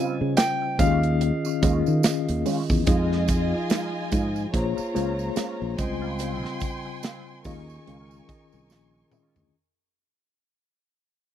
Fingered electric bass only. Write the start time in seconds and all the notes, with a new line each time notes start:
0.21 C#3
0.79 D#2
1.63 D#2
1.88 D#3
2.05 muted fingered electric bass stroke
2.30 D#2
2.70 E2
2.88 F2
4.13 G#2
4.54 A#1
4.79 muted fingered electric bass stroke
4.96 C#2
5.38 muted fingered electric bass stroke
5.62 A#1
5.79 C#2
7.45 D#2
7.88 C#2
8.54 C2
8.70 A#1
9.36 D2